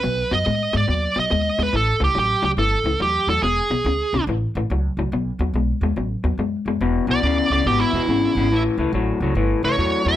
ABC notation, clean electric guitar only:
X:1
M:4/4
L:1/8
Q:"Swing" 1/4=142
K:A
V:1 name="Clean electric guitar" clef=bass
[B,,F,] [B,,F,] [B,,G,] [B,,G,] [B,,F,] [B,,F,] [B,,G,] [B,,G,] | [A,,E,] [A,,E,] [A,,F,] [A,,F,] [A,,E,] [A,,E,] [A,,F,] [A,,F,] | [E,,B,,] [E,,B,,] [E,,C,] [E,,C,] [A,,E,] [A,,E,] [A,,F,] [A,,F,] | [B,,F,] [B,,F,] [B,,G,] [B,,G,] [B,,F,] [B,,F,] [B,,G,] [B,,G,] |
[E,,B,,] [E,,B,,] [E,,C,] [E,,C,] [E,,B,,] [E,,B,,] [E,,C,] [E,,C,] | [A,,E,] [A,,E,] [A,,F,] [A,,F,] [A,,E,] [A,,E,] [A,,F,] [A,,F,] |]